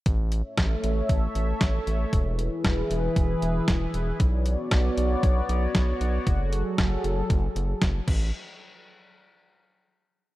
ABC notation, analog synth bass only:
X:1
M:4/4
L:1/8
Q:1/4=116
K:A
V:1 name="Analog synth bass" clef=bass
A,,,2 A,,, A,,, A,,, A,,, A,,, A,,, | E,,,2 E,,, E,,, E,,, E,,, E,,, E,,, | B,,,2 B,,, B,,, B,,, B,,, B,,, B,,, | F,,,2 F,,, F,,, F,,, F,,, F,,, A,,, |
z8 |]